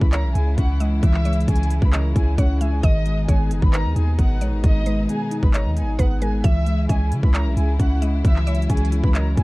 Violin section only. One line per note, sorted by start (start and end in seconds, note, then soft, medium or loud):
0.01 0.11 B4 medium
0.01 0.10 B5 medium
0.12 0.31 A#4 medium
0.12 0.31 A#5 loud
0.35 0.54 G#4 medium
0.35 0.53 G#5 medium
0.58 0.76 F#5 medium
0.58 0.76 F#6 medium
1.03 1.45 E5 loud
1.03 1.46 E6 medium
1.48 1.80 G#4 medium
1.48 1.80 G#5 medium
1.82 1.91 B4 medium
1.82 1.91 B5 medium
1.93 2.12 A#4 medium
1.93 2.11 A#5 medium
2.15 2.34 G#4 medium
2.15 2.34 G#5 medium
2.38 2.56 F#5 medium
2.38 2.57 F#6 medium
2.61 2.79 G#4 medium
2.61 2.79 G#5 medium
2.83 3.26 D#5 loud
2.83 3.26 D#6 medium
3.28 3.61 G#4 medium
3.28 3.60 G#5 medium
3.62 3.72 B4 medium
3.62 3.71 B5 medium
3.73 3.92 A#4 medium
3.73 3.92 A#5 loud
3.96 4.15 G#4 medium
3.96 4.14 G#5 medium
4.19 4.37 F#5 medium
4.19 4.37 F#6 medium
4.64 5.06 D#5 loud
4.64 5.07 D#6 medium
5.09 5.41 G#4 medium
5.09 5.41 G#5 medium
5.43 5.52 B4 medium
5.43 5.52 B5 medium
5.54 5.72 A#4 medium
5.54 5.72 A#5 medium
5.77 5.95 G#4 medium
5.77 5.95 G#5 medium
5.99 6.17 F#5 medium
5.99 6.18 F#6 medium
6.22 6.40 G#4 medium
6.22 6.40 G#5 medium
6.44 6.87 E5 loud
6.44 6.87 E6 medium
6.89 7.21 G#4 medium
6.89 7.21 G#5 medium
7.23 7.33 B4 medium
7.23 7.32 B5 medium
7.34 7.53 A#4 medium
7.34 7.53 A#5 loud
7.57 7.76 G#4 medium
7.57 7.75 G#5 medium
7.79 7.98 F#5 medium
7.79 7.98 F#6 medium
8.25 8.67 E5 loud
8.25 8.67 E6 medium
8.70 9.02 G#4 medium
8.70 9.02 G#5 medium
9.04 9.13 B4 medium
9.04 9.13 B5 medium
9.15 9.33 A#4 medium
9.15 9.33 A#5 medium
9.37 9.43 G#4 medium
9.37 9.43 G#5 medium